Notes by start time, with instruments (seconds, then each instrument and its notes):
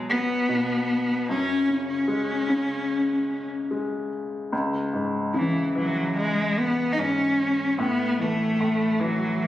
Already playing: grand piano B2 F#3
0.10 cello B3
0.49 grand piano B2
1.29 grand piano F#2, cello C#4
1.69 grand piano C#3
1.90 cello C#4
2.08 grand piano G#3
2.48 grand piano C#3
3.71 grand piano G#3
4.52 grand piano C#2
4.93 grand piano G#2
5.34 grand piano C#3, cello E3
5.75 grand piano E3, cello F#3
6.18 cello G#3
6.59 cello B3
6.93 cello D#4
6.97 grand piano G#2, cello C#4
7.78 grand piano A2, cello B3
8.19 grand piano E3, cello A3
8.60 grand piano A2
9.00 grand piano E3, cello F#3
9.43 cello E3